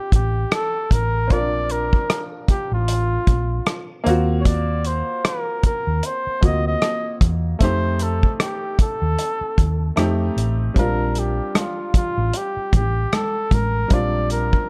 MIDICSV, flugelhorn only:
0, 0, Header, 1, 2, 480
1, 0, Start_track
1, 0, Key_signature, -2, "major"
1, 0, Tempo, 787402
1, 796, Time_signature, 4, 2, 24, 8
1, 8957, End_track
2, 0, Start_track
2, 0, Title_t, "Flugelhorn"
2, 0, Program_c, 0, 56
2, 0, Note_on_c, 0, 67, 81
2, 86, Note_off_c, 0, 67, 0
2, 89, Note_on_c, 0, 67, 75
2, 306, Note_off_c, 0, 67, 0
2, 330, Note_on_c, 0, 69, 92
2, 567, Note_on_c, 0, 70, 94
2, 576, Note_off_c, 0, 69, 0
2, 804, Note_on_c, 0, 74, 115
2, 813, Note_off_c, 0, 70, 0
2, 1047, Note_on_c, 0, 70, 90
2, 1056, Note_off_c, 0, 74, 0
2, 1370, Note_off_c, 0, 70, 0
2, 1527, Note_on_c, 0, 67, 78
2, 1652, Note_off_c, 0, 67, 0
2, 1670, Note_on_c, 0, 65, 76
2, 2359, Note_off_c, 0, 65, 0
2, 2687, Note_on_c, 0, 73, 64
2, 2723, Note_on_c, 0, 74, 83
2, 2732, Note_off_c, 0, 73, 0
2, 2966, Note_on_c, 0, 72, 70
2, 2976, Note_off_c, 0, 74, 0
2, 3208, Note_on_c, 0, 70, 80
2, 3217, Note_off_c, 0, 72, 0
2, 3443, Note_off_c, 0, 70, 0
2, 3453, Note_on_c, 0, 70, 81
2, 3694, Note_on_c, 0, 72, 80
2, 3703, Note_off_c, 0, 70, 0
2, 3933, Note_on_c, 0, 75, 92
2, 3942, Note_off_c, 0, 72, 0
2, 4065, Note_off_c, 0, 75, 0
2, 4070, Note_on_c, 0, 75, 92
2, 4381, Note_off_c, 0, 75, 0
2, 4653, Note_on_c, 0, 72, 103
2, 4894, Note_on_c, 0, 69, 84
2, 4903, Note_off_c, 0, 72, 0
2, 5093, Note_off_c, 0, 69, 0
2, 5093, Note_on_c, 0, 69, 53
2, 5128, Note_on_c, 0, 67, 79
2, 5138, Note_off_c, 0, 69, 0
2, 5363, Note_off_c, 0, 67, 0
2, 5374, Note_on_c, 0, 69, 87
2, 6062, Note_off_c, 0, 69, 0
2, 6576, Note_on_c, 0, 70, 93
2, 6822, Note_on_c, 0, 67, 75
2, 6831, Note_off_c, 0, 70, 0
2, 7058, Note_on_c, 0, 65, 70
2, 7067, Note_off_c, 0, 67, 0
2, 7288, Note_off_c, 0, 65, 0
2, 7295, Note_on_c, 0, 65, 81
2, 7542, Note_on_c, 0, 67, 82
2, 7551, Note_off_c, 0, 65, 0
2, 7770, Note_off_c, 0, 67, 0
2, 7779, Note_on_c, 0, 67, 82
2, 8014, Note_on_c, 0, 69, 88
2, 8023, Note_off_c, 0, 67, 0
2, 8255, Note_on_c, 0, 70, 93
2, 8264, Note_off_c, 0, 69, 0
2, 8495, Note_on_c, 0, 74, 115
2, 8504, Note_off_c, 0, 70, 0
2, 8727, Note_off_c, 0, 74, 0
2, 8729, Note_on_c, 0, 70, 86
2, 8957, Note_off_c, 0, 70, 0
2, 8957, End_track
0, 0, End_of_file